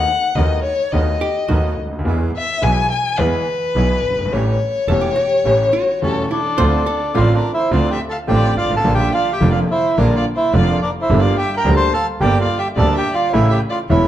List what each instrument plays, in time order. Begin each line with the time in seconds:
Already playing: violin F#5
0.35 double bass D#2, grand piano D#2 D#3 A3 B3 F#4, bandoneon A3 B3 D#4, violin D#5
0.64 violin C#5
0.92 double bass D#2, grand piano D#2 D#3 A3 B3 F#4, bandoneon A3 B3 D#4, violin D#5
1.21 hollow-body jazz guitar G4
1.48 double bass D#2, grand piano D#2 D#3 A3 B3 F#4, bandoneon A3 B3 D#4, hollow-body jazz guitar F#4
1.78 double bass D2
1.84 grand piano C#2
1.91 grand piano D2
1.99 grand piano D#2
2.04 grand piano E2 E3 G#3 B3 G#4, double bass E2, bandoneon G#3 B3 E4
2.36 violin E5
2.62 grand piano B1 B2 E3 G#3 B3 G#4, double bass B1, bandoneon G#3 B3 E4, violin G#5
2.91 violin G#5
3.18 grand piano E2 E3 G#3 B3 G#4, double bass E2, bandoneon G#3 B3 E4, violin B4
3.75 double bass B1, grand piano B1 B2 E3 G#3 B3 G#4, bandoneon G#3 B3 E4
4.04 double bass G1
4.10 grand piano F#1
4.18 grand piano G1
4.25 grand piano G#1
4.32 double bass A1, grand piano A1 A2 E3 A3 C#4 G4, bandoneon G3 A3 C#4, violin C#5
4.88 double bass E1, grand piano E1 E2 E3 A3 C#4 G4, bandoneon G3 A3 C#4, hollow-body jazz guitar A4
5.01 hollow-body jazz guitar G4
5.16 hollow-body jazz guitar G4
5.45 double bass A1, grand piano A1 A2 E3 A3 C#4 G4, bandoneon G3 A3 C#4
5.59 hollow-body jazz guitar F#4
5.73 hollow-body jazz guitar F#4
6.02 grand piano E1 E2 E3 A3 C#4 G4, bandoneon G3 A3 C#4 C#5, violin A4
6.31 bandoneon D4 D5, hollow-body jazz guitar E4, violin A4
6.58 double bass D2, grand piano D2 D3 A3 C4 F4, bandoneon F3 C4 D4, hollow-body jazz guitar C5
6.86 hollow-body jazz guitar A4
7.14 grand piano A1 A2 D3 A3 C4 F4, double bass A1, bandoneon F3 C4 D4 F4 F5, hollow-body jazz guitar F4, violin D5
7.34 bandoneon D4 D5, violin A#4
7.54 bandoneon E4 E5, violin C5
7.71 grand piano D2 D3 A3 C4 F4, double bass D2, bandoneon F3 C4 D4 F4 F5
7.75 violin D5
7.91 bandoneon G4 G5, violin E5
8.09 bandoneon A4 A5, violin F5
8.27 grand piano A1 A2 D3 A3 C4 F4, double bass A1, bandoneon F3 C4 D4 G4 G5, violin D5
8.57 double bass G#1, bandoneon F4 F5, violin D5
8.63 grand piano G1
8.70 grand piano G#1
8.77 grand piano A1, bandoneon A4 A5, violin F5
8.84 grand piano A#1 A#2 D3 F3 A#3 F4, double bass A#1, bandoneon F3 A#3 D4
8.94 bandoneon G4 G5, violin E5
9.14 bandoneon F4 F5, violin D5
9.33 bandoneon G4 G5, violin E5
9.40 grand piano F1 F2 D3 F3 A#3 F4, double bass F1, bandoneon F3 A#3 D4
9.51 bandoneon F4 F5, violin D5
9.69 bandoneon E4 E5, violin C5
9.97 grand piano A#1 A#2 D3 F3 A#3 F4, double bass A#1, bandoneon F3 A#3 D4 D5, violin A#4
10.16 bandoneon F4 F5, violin D5
10.36 bandoneon E4 E5, violin C5
10.53 grand piano F1 F2 D3 F3 A#3 F4, double bass F1, bandoneon F3 A#3 D4 F4 F5, violin D5
10.82 bandoneon D4 D5, violin A#4
11.01 bandoneon E4 E5, violin C5
11.09 double bass G1, grand piano G1 G2 D3 G3 A#3 G4, bandoneon G3 A#3 D4
11.19 bandoneon F4 F5, violin D5
11.37 bandoneon G4 G5, violin E5
11.57 bandoneon A#4 A#5, violin G5
11.65 double bass D2, grand piano D2 D3 G3 A#3 G4, bandoneon G3 A#3 D4
11.75 bandoneon C5 C6, violin A5
11.93 bandoneon A4 A5, violin F5
12.20 double bass G1, grand piano G1 G2 D3 G3 A#3 G4, bandoneon G3 A#3 D4 G4 G5, violin D5
12.41 bandoneon F4 F5, violin D5
12.59 bandoneon G4 G5, violin E5
12.76 grand piano D2 D3 G3 A#3 G4, double bass D2, bandoneon G3 A#3 D4 A4 A5, violin D5
12.96 bandoneon G4 G5, violin E5
13.14 bandoneon F4 F5, violin D5
13.31 grand piano A1 A2 C#3 E3 A3 E4, double bass A1, bandoneon A3 C#4 E4 E5, violin C#5
13.50 bandoneon G4 G5, violin E5
13.69 bandoneon F4 F5, violin D5
13.89 grand piano E1 E2 C#3 E3 A3 E4, double bass E1, bandoneon A3 C#4 E4 E5, violin C#5